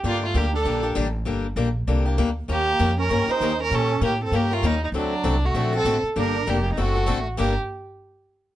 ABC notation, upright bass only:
X:1
M:4/4
L:1/8
Q:"Swing" 1/4=196
K:Gm
V:1 name="Upright bass" clef=bass
G,,2 D,,2 B,,,2 A,,,2 | G,,,2 B,,,2 C,,2 D,,2 | E,,2 F,,2 G,, z E,,2 | B,,2 A,,2 G,,2 E,,2 |
D,,2 C,,2 B,,,2 A,,, z | G,,,2 F,,,2 ^F,,,2 A,,,2 | G,,, z6 z |]